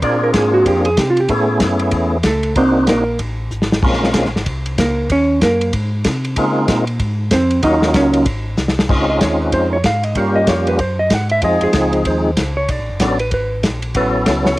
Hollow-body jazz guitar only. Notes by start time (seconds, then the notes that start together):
0.04 D5
0.24 A#4
0.35 G#4
0.54 F#4
0.68 G4
0.86 G#4
0.98 G4
1.10 F4
1.20 G4
1.31 G#4
2.27 A3 A4
2.57 C4 C5
2.89 A#3 A#4
4.79 A#3 A#4
5.12 C#4 C#5
5.43 A#3 A#4
7.32 C4 C5
7.64 D#4 D#5
7.96 C#4 C#5
9.10 D#5
9.22 C#5
9.41 B4
9.54 C5
9.73 C#5
9.86 F5
10.04 D#5
10.18 F5
10.36 D#5
10.49 C#5
10.68 B4
10.81 C5
10.99 D#5
11.14 F#5
11.32 E5
11.45 D#5
11.63 G#4
12.07 C5
12.57 C#5
12.70 D5
13.20 B4
13.34 B4
13.97 B4
14.47 C#5